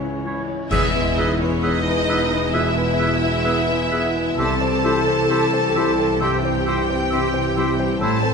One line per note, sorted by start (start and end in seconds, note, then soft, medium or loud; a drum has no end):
0.00 0.51 C#2 medium
0.00 0.74 G#2 soft
0.00 0.51 C#3 medium
0.00 0.75 C#3 medium
0.00 0.47 E3 medium
0.00 0.24 G#3 soft
0.00 0.15 C#4 soft
0.00 0.47 C#4 medium
0.00 0.48 C#4 soft
0.00 0.24 E4 soft
0.00 0.94 E4 soft
0.00 1.17 G#4 soft
0.00 0.02 C#5 soft
0.00 0.51 C#5 medium
0.00 0.75 C#5 soft
0.00 0.39 C#5 soft
0.24 4.16 G#3 soft
0.24 0.62 E4 soft
0.24 0.41 E4 soft
0.24 0.42 C#5 soft
0.48 0.75 C#4 soft
0.48 0.71 C#5 soft
0.70 4.34 E1 medium
0.70 2.49 E2 medium
0.70 2.04 E2 medium
0.70 4.34 E2 medium
0.70 4.42 E3 medium
0.70 4.34 G#3 medium
0.70 4.33 B3 medium
0.70 0.93 B3 medium
0.70 1.14 E4 medium
0.70 0.87 G#4 medium
0.70 0.88 B4 medium
0.70 1.15 E5 loud
0.70 0.81 E6 medium
0.70 concert bass drum medium
0.70 crash medium
0.94 1.17 G#3 medium
0.94 1.17 E4 medium
0.94 2.31 E4 medium
0.94 1.31 B4 medium
1.16 1.40 B3 medium
1.16 1.40 D#4 medium
1.16 1.54 E4 medium
1.16 1.34 G#4 medium
1.16 1.86 G#4 medium
1.16 1.34 B4 medium
1.16 1.40 D#5 medium
1.16 1.28 E6 medium
1.39 1.63 G#3 medium
1.39 1.62 C#4 medium
1.39 1.63 E4 medium
1.39 3.22 B4 medium
1.39 1.77 B4 medium
1.39 1.63 C#5 medium
1.62 1.84 B3 medium
1.62 2.00 B3 soft
1.62 2.54 D#4 medium
1.62 1.79 G#4 medium
1.62 1.79 B4 medium
1.62 2.54 D#5 loud
1.62 1.73 E6 medium
1.85 2.08 G#3 medium
1.85 2.08 E4 medium
1.85 2.99 G#4 medium
1.85 2.23 B4 medium
2.08 2.31 B3 medium
2.08 2.53 B3 medium
2.08 2.45 E4 medium
2.08 2.24 G#4 medium
2.08 2.25 B4 medium
2.08 2.19 E6 medium
2.32 2.54 G#3 medium
2.32 2.54 E4 medium
2.32 2.77 E4 medium
2.32 2.68 B4 medium
2.53 2.90 B2 medium
2.53 3.91 B3 medium
2.53 2.76 B3 medium
2.53 4.38 E4 medium
2.53 2.69 G#4 medium
2.53 2.70 B4 medium
2.53 4.38 E5 loud
2.53 2.64 E6 medium
2.77 3.00 G#3 medium
2.77 2.99 E4 medium
2.77 4.14 E4 medium
2.77 3.13 B4 medium
2.99 3.23 B3 medium
2.99 3.36 E4 medium
2.99 3.15 G#4 medium
2.99 3.68 G#4 medium
2.99 3.15 B4 medium
2.99 3.09 E6 medium
3.22 3.46 G#3 medium
3.22 3.46 E4 medium
3.22 3.58 B4 medium
3.22 4.42 B4 medium
3.44 3.82 B3 medium
3.44 3.67 B3 medium
3.44 3.60 G#4 medium
3.44 3.60 B4 medium
3.44 7.36 E5 medium
3.44 3.55 E6 medium
3.67 3.92 G#3 medium
3.67 3.92 E4 medium
3.67 4.42 G#4 medium
3.67 4.05 B4 medium
3.91 4.42 B3 medium
3.91 4.16 B3 medium
3.91 4.29 E4 medium
3.91 4.08 G#4 medium
3.91 4.07 B4 medium
3.91 4.02 E6 medium
4.15 4.39 G#3 medium
4.15 4.84 E4 medium
4.15 4.38 E4 medium
4.15 4.39 B4 medium
4.38 7.98 C2 medium
4.38 6.17 C2 medium
4.38 7.97 C3 medium
4.38 8.05 C3 medium
4.38 7.98 E3 medium
4.38 7.98 C4 medium
4.38 4.60 E4 medium
4.38 4.55 G4 medium
4.38 6.17 A4 loud
4.38 4.55 C5 medium
4.38 6.17 A5 loud
4.38 4.48 E6 medium
4.61 5.52 C4 soft
4.61 4.85 C4 medium
4.61 4.85 G4 medium
4.61 4.98 C5 medium
4.84 5.21 E4 medium
4.84 5.29 E4 medium
4.84 5.08 E4 medium
4.84 5.01 G4 medium
4.84 5.01 C5 medium
4.84 4.94 E6 medium
5.07 5.30 C4 medium
5.07 5.30 G4 medium
5.07 6.88 C5 medium
5.07 5.44 C5 medium
5.30 5.67 C4 soft
5.30 6.65 E4 medium
5.30 5.52 E4 medium
5.30 5.46 G4 medium
5.30 5.46 C5 medium
5.30 5.41 E6 medium
5.53 5.97 C4 medium
5.53 5.76 C4 medium
5.53 5.76 G4 medium
5.53 5.89 C5 medium
5.75 6.19 G3 medium
5.75 5.98 E4 medium
5.75 6.12 E4 medium
5.75 5.92 G4 medium
5.75 5.92 C5 medium
5.75 5.86 E6 medium
5.98 6.21 C4 medium
5.98 6.42 C4 medium
5.98 6.21 G4 medium
5.98 6.35 C5 medium
6.20 6.57 G2 medium
6.20 7.55 G3 medium
6.20 6.42 E4 medium
6.20 6.38 G4 medium
6.20 8.02 G4 medium
6.20 6.38 C5 medium
6.20 8.02 G5 medium
6.20 6.31 E6 medium
6.43 7.33 C4 medium
6.43 6.66 C4 medium
6.43 6.66 G4 medium
6.43 6.80 C5 medium
6.65 6.89 E4 medium
6.65 7.10 E4 medium
6.65 7.03 E4 medium
6.65 6.83 G4 medium
6.65 6.83 C5 medium
6.65 6.76 E6 medium
6.88 7.11 C4 medium
6.88 7.11 G4 medium
6.88 8.34 C5 medium
6.88 7.25 C5 medium
7.10 7.48 C4 medium
7.10 7.32 E4 medium
7.10 8.34 E4 medium
7.10 7.29 G4 medium
7.10 7.28 C5 medium
7.10 7.21 E6 medium
7.34 7.78 C4 soft
7.34 7.57 C4 medium
7.34 7.57 G4 medium
7.34 7.70 C5 medium
7.56 8.05 G3 medium
7.56 7.92 E4 medium
7.56 7.79 E4 medium
7.56 7.75 G4 medium
7.56 7.73 C5 medium
7.56 7.66 E6 medium
7.78 8.01 C4 medium
7.78 8.22 C4 medium
7.78 8.01 G4 medium
7.78 8.01 C5 medium
8.01 8.34 A1 medium
8.01 8.34 A2 medium
8.01 8.34 E3 medium
8.01 8.22 A3 medium
8.01 8.34 C4 medium
8.01 8.22 E4 medium
8.01 8.19 E4 medium
8.01 8.34 A4 medium
8.01 8.18 C5 medium
8.01 8.34 A5 loud
8.01 8.11 E6 medium
8.23 8.34 C4 medium
8.23 8.34 A4 medium
8.23 8.34 C5 medium